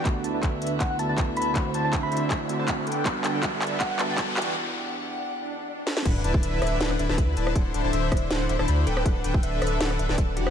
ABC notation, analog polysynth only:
X:1
M:4/4
L:1/16
Q:"Swing 16ths" 1/4=160
K:D
V:1 name="Analog polysynth"
[D,DEBf]2 [D,DEBa] [D,DEBa] [D,DEBe]2 [D,DEBe]2 [D,DEBf]2 [D,DEBe] [D,DEBa] [D,DEBb]2 [D,DEBa]2 | [D,DE=cf]2 [D,DEca] [D,DEca] [D,DEce]2 [D,DEce]2 [D,DEcf]2 [D,DEce] [D,DEca] [D,DEcb]2 [D,DABg]2 | [D,DABf]2 [D,DABg] [D,DABg] [D,DABe]2 [D,DABe]2 [D,DABf]2 [D,DABe] [D,DABg] [D,DABa]2 [E,DFGf]2 | z16 |
[D,DEBf]2 [D,DEBa] [D,DEBa] [D,DEBe]2 [D,DEBe]2 [D,DEBf]2 [D,DEBe] [D,DEBa] [D,DEBb]2 [D,DEBa]2 | [D,DE=cf]2 [D,DEca] [D,DEca] [D,DEce]2 [D,DEce]2 [D,DEcf]2 [D,DEce] [D,DEca] [D,DEcb]2 [D,DABg]2 | [D,DABf]2 [D,DABg] [D,DABg] [D,DABe]2 [D,DABe]2 [D,DABf]2 [D,DABe] [D,DABg] [D,DABa]2 [E,DFGf]2 |]